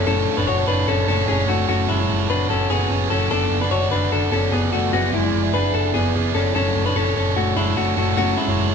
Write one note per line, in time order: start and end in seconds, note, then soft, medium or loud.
0.07 0.24 F#1 loud
0.07 0.37 F#3 medium
0.07 0.38 A3 loud
0.07 0.36 C#4 medium
0.07 0.38 D4 loud
0.07 0.35 A4 loud
0.07 0.37 A4 loud
0.07 0.36 C#5 loud
0.37 0.46 F#1 loud
0.37 0.48 D4 medium
0.37 0.59 D4 soft
0.37 0.57 A4 medium
0.37 0.47 B4 medium
0.37 0.56 C#5 medium
0.47 0.64 F#1 loud
0.47 0.68 F#4 medium
0.47 0.67 C#5 medium
0.57 1.08 D4 medium
0.57 1.09 A4 medium
0.57 1.10 C#5 medium
0.68 0.85 F#1 medium
0.68 0.88 D4 medium
0.68 0.88 B4 medium
0.88 1.05 F#1 loud
0.88 1.08 C#4 medium
0.88 1.07 A4 medium
1.08 1.25 F#1 loud
1.08 1.27 A3 medium
1.08 1.28 C#4 medium
1.08 1.28 D4 medium
1.08 1.28 A4 medium
1.08 1.29 A4 medium
1.08 1.30 C#5 medium
1.28 1.45 F#1 loud
1.28 1.47 A3 medium
1.28 1.49 C#4 medium
1.28 1.48 D4 medium
1.28 1.48 G#4 medium
1.28 1.49 A4 medium
1.28 1.50 C#5 medium
1.49 1.65 F#1 loud
1.49 1.69 A3 medium
1.49 1.68 A3 medium
1.49 1.69 D4 medium
1.49 1.67 F#4 medium
1.49 1.69 A4 medium
1.49 1.70 C#5 medium
1.69 1.86 F#1 loud
1.69 2.00 F#3 medium
1.69 1.89 A3 medium
1.69 2.00 C#4 medium
1.69 1.89 F#4 loud
1.69 2.00 F#4 loud
1.69 1.99 A4 medium
1.69 1.98 C#5 loud
1.89 2.06 F#1 medium
1.89 2.27 G#3 medium
1.89 2.27 E4 medium
1.99 2.21 F#4 soft
1.99 2.20 A4 soft
1.99 2.18 C#5 medium
2.10 2.26 F#1 loud
2.20 2.70 F#4 medium
2.20 2.71 A4 medium
2.20 2.70 C#5 medium
2.30 2.46 F#1 medium
2.30 2.50 D4 medium
2.30 2.50 B4 medium
2.50 2.67 F#1 loud
2.50 2.71 C#4 medium
2.50 2.70 A4 medium
2.70 2.87 F#1 medium
2.70 3.09 B3 medium
2.70 2.89 C#4 medium
2.70 2.90 F#4 medium
2.70 3.08 G#4 medium
2.70 2.91 A4 medium
2.70 2.91 C#5 medium
2.91 3.07 F#1 loud
2.91 3.10 C#4 medium
2.91 3.10 F#4 medium
2.91 3.12 A4 medium
2.91 3.12 C#5 medium
3.10 3.27 F#1 loud
3.10 3.31 C#4 medium
3.10 3.31 F#4 medium
3.10 3.30 A4 medium
3.10 3.32 A4 medium
3.10 3.32 C#5 medium
3.31 3.48 F#1 loud
3.31 3.62 F#3 medium
3.31 3.62 B3 loud
3.31 3.60 D4 medium
3.31 3.62 F#4 medium
3.31 3.59 A4 loud
3.31 3.62 A4 medium
3.31 3.60 D5 loud
3.51 3.68 F#1 medium
3.61 3.72 D4 soft
3.61 3.83 F#4 soft
3.61 3.82 A4 medium
3.61 3.71 B4 medium
3.61 3.81 D5 medium
3.71 3.88 F#1 loud
3.71 3.92 F#4 medium
3.71 3.91 C#5 medium
3.82 4.32 F#4 medium
3.82 4.33 A4 medium
3.82 4.34 D5 medium
3.91 4.08 F#1 loud
3.91 4.12 D4 medium
3.91 4.12 B4 medium
4.12 4.29 F#1 loud
4.12 4.33 D4 medium
4.12 4.31 A4 medium
4.32 4.49 F#1 loud
4.32 4.52 B3 medium
4.32 4.53 C#4 medium
4.32 4.53 F#4 medium
4.32 4.52 A4 medium
4.32 4.54 A4 medium
4.32 4.54 D5 medium
4.52 4.69 F#1 loud
4.52 4.73 B3 medium
4.52 4.71 B3 medium
4.52 4.72 F#4 medium
4.52 4.72 G#4 medium
4.52 4.73 A4 medium
4.52 4.74 D5 medium
4.72 4.90 F#1 loud
4.72 4.94 A3 medium
4.72 4.93 B3 medium
4.72 4.92 F#4 medium
4.72 4.94 F#4 medium
4.72 4.94 A4 medium
4.72 4.94 D5 medium
4.93 5.10 F#1 loud
4.93 5.24 F#3 medium
4.93 5.14 B3 medium
4.93 5.24 B3 loud
4.93 5.24 E4 medium
4.93 5.13 F#4 loud
4.93 5.23 G#4 medium
4.93 5.22 D5 medium
5.13 5.30 F#1 loud
5.13 5.52 G#3 medium
5.13 5.52 E4 medium
5.23 5.44 E4 soft
5.23 5.44 G#4 medium
5.23 5.42 D5 medium
5.34 5.51 F#1 loud
5.43 5.94 E4 soft
5.43 5.95 G#4 medium
5.43 5.96 D5 medium
5.54 5.71 F#1 loud
5.54 5.73 D4 medium
5.54 5.74 B4 medium
5.74 5.91 F#1 loud
5.74 5.95 D4 medium
5.74 5.94 A4 medium
5.94 6.11 F#1 loud
5.94 6.13 B3 medium
5.94 6.33 B3 medium
5.94 6.14 E4 medium
5.94 6.32 G#4 medium
5.94 6.15 G#4 medium
5.94 6.16 D5 medium
6.15 6.32 F#1 loud
6.15 6.33 B3 medium
6.15 6.34 E4 medium
6.15 6.35 G#4 medium
6.15 6.36 D5 medium
6.34 6.52 F#1 loud
6.34 6.55 B3 medium
6.34 6.55 C#4 medium
6.34 6.56 E4 medium
6.34 6.56 G#4 medium
6.34 6.54 A4 medium
6.34 6.56 D5 medium
6.55 6.72 F#1 loud
6.55 6.86 F#3 medium
6.55 6.86 A3 medium
6.55 6.84 C#4 medium
6.55 6.86 D4 medium
6.55 6.84 A4 loud
6.55 6.85 A4 loud
6.55 6.84 C#5 loud
6.76 6.93 F#1 loud
6.85 6.96 D4 soft
6.85 7.07 D4 soft
6.85 7.05 A4 medium
6.85 6.96 B4 medium
6.85 7.04 C#5 medium
6.96 7.13 F#1 loud
6.96 7.16 C#4 medium
6.96 7.15 A4 medium
7.05 7.56 D4 medium
7.05 7.57 A4 medium
7.05 7.58 C#5 medium
7.16 7.33 F#1 loud
7.16 7.37 C#4 medium
7.16 7.36 A4 medium
7.36 7.53 F#1 loud
7.36 7.57 A3 medium
7.36 7.57 F#4 medium
7.56 7.74 F#1 loud
7.56 7.77 G#3 medium
7.56 7.75 A3 medium
7.56 7.76 D4 medium
7.56 7.77 E4 medium
7.56 7.77 A4 medium
7.56 7.77 C#5 medium
7.76 7.94 F#1 medium
7.76 7.96 A3 medium
7.76 7.97 A3 medium
7.76 7.97 D4 medium
7.76 7.96 F#4 medium
7.76 7.97 A4 medium
7.76 7.98 C#5 medium
7.97 8.14 F#1 medium
7.97 8.17 A3 medium
7.97 8.18 D4 medium
7.97 8.16 F#4 medium
7.97 8.18 A4 medium
7.97 8.18 C#5 medium
8.17 8.34 F#1 loud
8.17 8.48 F#3 medium
8.17 8.38 A3 medium
8.17 8.48 C#4 loud
8.17 8.38 F#4 loud
8.17 8.48 F#4 loud
8.17 8.48 A4 loud
8.17 8.46 C#5 loud
8.37 8.75 G#3 medium
8.37 8.75 E4 medium
8.47 8.56 F#1 loud
8.47 8.69 F#4 soft
8.47 8.68 A4 medium
8.47 8.67 C#5 medium
8.58 8.75 F#1 loud
8.68 8.75 F#4 medium
8.68 8.75 A4 medium
8.68 8.75 C#5 medium